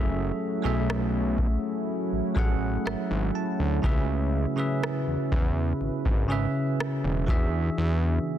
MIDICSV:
0, 0, Header, 1, 5, 480
1, 0, Start_track
1, 0, Key_signature, 3, "minor"
1, 0, Tempo, 983607
1, 1874, Time_signature, 4, 2, 24, 8
1, 4090, End_track
2, 0, Start_track
2, 0, Title_t, "Tine electric piano"
2, 0, Program_c, 0, 4
2, 0, Control_c, 0, 64, 127
2, 0, Note_on_c, 0, 54, 78
2, 0, Note_on_c, 0, 61, 72
2, 0, Note_on_c, 0, 68, 72
2, 0, Note_on_c, 0, 69, 72
2, 0, Note_on_c, 0, 76, 88
2, 240, Note_off_c, 0, 54, 0
2, 243, Note_off_c, 0, 61, 0
2, 245, Note_off_c, 0, 68, 0
2, 248, Note_off_c, 0, 69, 0
2, 250, Note_off_c, 0, 76, 0
2, 304, Note_on_c, 0, 54, 82
2, 309, Note_on_c, 0, 61, 77
2, 313, Note_on_c, 0, 68, 73
2, 318, Note_on_c, 0, 69, 74
2, 323, Note_on_c, 0, 76, 90
2, 989, Note_off_c, 0, 54, 0
2, 992, Note_off_c, 0, 61, 0
2, 993, Note_off_c, 0, 68, 0
2, 996, Note_off_c, 0, 69, 0
2, 998, Note_off_c, 0, 76, 0
2, 1146, Note_on_c, 0, 54, 86
2, 1151, Note_on_c, 0, 61, 80
2, 1155, Note_on_c, 0, 68, 76
2, 1160, Note_on_c, 0, 69, 78
2, 1165, Note_on_c, 0, 78, 94
2, 1394, Note_on_c, 0, 76, 67
2, 1617, Note_off_c, 0, 76, 0
2, 1636, Note_on_c, 0, 81, 66
2, 1733, Note_off_c, 0, 54, 0
2, 1735, Note_off_c, 0, 61, 0
2, 1738, Note_off_c, 0, 68, 0
2, 1740, Note_off_c, 0, 69, 0
2, 1742, Note_off_c, 0, 78, 0
2, 1858, Note_off_c, 0, 81, 0
2, 1865, Note_on_c, 0, 49, 79
2, 1870, Note_on_c, 0, 61, 76
2, 1874, Note_on_c, 0, 68, 71
2, 1879, Note_on_c, 0, 71, 71
2, 1881, Control_c, 0, 64, 0
2, 1884, Note_on_c, 0, 76, 85
2, 1968, Control_c, 0, 64, 127
2, 2161, Note_off_c, 0, 49, 0
2, 2163, Note_off_c, 0, 61, 0
2, 2165, Note_off_c, 0, 68, 0
2, 2168, Note_off_c, 0, 71, 0
2, 2170, Note_off_c, 0, 76, 0
2, 2225, Note_on_c, 0, 49, 80
2, 2229, Note_on_c, 0, 61, 69
2, 2234, Note_on_c, 0, 68, 73
2, 2238, Note_on_c, 0, 71, 72
2, 2243, Note_on_c, 0, 76, 89
2, 2909, Note_off_c, 0, 49, 0
2, 2911, Note_off_c, 0, 61, 0
2, 2914, Note_off_c, 0, 68, 0
2, 2916, Note_off_c, 0, 71, 0
2, 2919, Note_off_c, 0, 76, 0
2, 3064, Note_on_c, 0, 49, 90
2, 3070, Note_on_c, 0, 61, 82
2, 3075, Note_on_c, 0, 68, 81
2, 3080, Note_on_c, 0, 71, 77
2, 3083, Note_on_c, 0, 76, 95
2, 3545, Note_on_c, 0, 52, 86
2, 3549, Note_off_c, 0, 49, 0
2, 3549, Note_on_c, 0, 62, 75
2, 3552, Note_off_c, 0, 61, 0
2, 3553, Note_off_c, 0, 68, 0
2, 3554, Note_on_c, 0, 66, 76
2, 3557, Note_off_c, 0, 71, 0
2, 3558, Note_off_c, 0, 76, 0
2, 3559, Note_on_c, 0, 68, 77
2, 3560, Control_c, 0, 64, 0
2, 3563, Note_on_c, 0, 76, 92
2, 3646, Control_c, 0, 64, 127
2, 4035, Note_off_c, 0, 52, 0
2, 4037, Note_off_c, 0, 62, 0
2, 4040, Note_off_c, 0, 66, 0
2, 4042, Note_off_c, 0, 68, 0
2, 4044, Note_off_c, 0, 76, 0
2, 4090, End_track
3, 0, Start_track
3, 0, Title_t, "Ambient pad"
3, 0, Program_c, 1, 92
3, 0, Note_on_c, 1, 54, 81
3, 0, Note_on_c, 1, 57, 86
3, 0, Note_on_c, 1, 61, 77
3, 0, Note_on_c, 1, 64, 74
3, 0, Note_on_c, 1, 66, 75
3, 1855, Note_off_c, 1, 54, 0
3, 1855, Note_off_c, 1, 57, 0
3, 1875, Note_on_c, 1, 49, 77
3, 1875, Note_on_c, 1, 71, 89
3, 3535, Note_off_c, 1, 61, 0
3, 3535, Note_off_c, 1, 64, 0
3, 3535, Note_off_c, 1, 66, 0
3, 3538, Note_off_c, 1, 49, 0
3, 3538, Note_off_c, 1, 71, 0
3, 3553, Note_on_c, 1, 62, 74
3, 3555, Note_on_c, 1, 52, 81
3, 3555, Note_on_c, 1, 59, 72
3, 3555, Note_on_c, 1, 66, 74
3, 3555, Note_on_c, 1, 80, 86
3, 4090, Note_off_c, 1, 52, 0
3, 4090, Note_off_c, 1, 59, 0
3, 4090, Note_off_c, 1, 62, 0
3, 4090, Note_off_c, 1, 66, 0
3, 4090, Note_off_c, 1, 80, 0
3, 4090, End_track
4, 0, Start_track
4, 0, Title_t, "Analog synth bass"
4, 0, Program_c, 2, 38
4, 0, Note_on_c, 2, 30, 104
4, 156, Note_off_c, 2, 30, 0
4, 315, Note_on_c, 2, 35, 98
4, 720, Note_off_c, 2, 35, 0
4, 1036, Note_on_c, 2, 33, 43
4, 1084, Note_off_c, 2, 33, 0
4, 1153, Note_on_c, 2, 33, 86
4, 1356, Note_off_c, 2, 33, 0
4, 1397, Note_on_c, 2, 32, 47
4, 1444, Note_off_c, 2, 32, 0
4, 1516, Note_on_c, 2, 32, 97
4, 1616, Note_off_c, 2, 32, 0
4, 1754, Note_on_c, 2, 38, 85
4, 1855, Note_off_c, 2, 38, 0
4, 1873, Note_on_c, 2, 37, 102
4, 2177, Note_off_c, 2, 37, 0
4, 2476, Note_on_c, 2, 40, 47
4, 2524, Note_off_c, 2, 40, 0
4, 2596, Note_on_c, 2, 40, 87
4, 2798, Note_off_c, 2, 40, 0
4, 2835, Note_on_c, 2, 32, 51
4, 2883, Note_off_c, 2, 32, 0
4, 2955, Note_on_c, 2, 32, 88
4, 3157, Note_off_c, 2, 32, 0
4, 3435, Note_on_c, 2, 28, 87
4, 3555, Note_on_c, 2, 40, 105
4, 3562, Note_off_c, 2, 28, 0
4, 3757, Note_off_c, 2, 40, 0
4, 3796, Note_on_c, 2, 40, 109
4, 3998, Note_off_c, 2, 40, 0
4, 4090, End_track
5, 0, Start_track
5, 0, Title_t, "Drums"
5, 439, Note_on_c, 9, 37, 105
5, 488, Note_off_c, 9, 37, 0
5, 675, Note_on_c, 9, 36, 87
5, 724, Note_off_c, 9, 36, 0
5, 1152, Note_on_c, 9, 36, 91
5, 1201, Note_off_c, 9, 36, 0
5, 1401, Note_on_c, 9, 37, 99
5, 1449, Note_off_c, 9, 37, 0
5, 1873, Note_on_c, 9, 36, 103
5, 1921, Note_off_c, 9, 36, 0
5, 2359, Note_on_c, 9, 37, 108
5, 2408, Note_off_c, 9, 37, 0
5, 2595, Note_on_c, 9, 36, 89
5, 2644, Note_off_c, 9, 36, 0
5, 2954, Note_on_c, 9, 36, 93
5, 3003, Note_off_c, 9, 36, 0
5, 3320, Note_on_c, 9, 37, 107
5, 3369, Note_off_c, 9, 37, 0
5, 3554, Note_on_c, 9, 36, 101
5, 3602, Note_off_c, 9, 36, 0
5, 4090, End_track
0, 0, End_of_file